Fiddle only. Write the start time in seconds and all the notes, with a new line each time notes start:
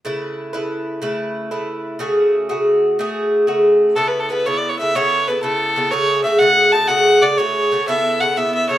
3.96 A4
4.08 B4
4.20 A4
4.31 B4
4.46 C#5
4.57 D5
4.69 C#5
4.79 E5
4.96 C#5
5.28 B4
5.43 A4
5.91 C#5
6.24 E5
6.39 F#5
6.72 A5
6.87 F#5
7.22 D5
7.37 C#5
7.88 E5
8.20 F#5
8.37 E5
8.55 E5
8.69 C#5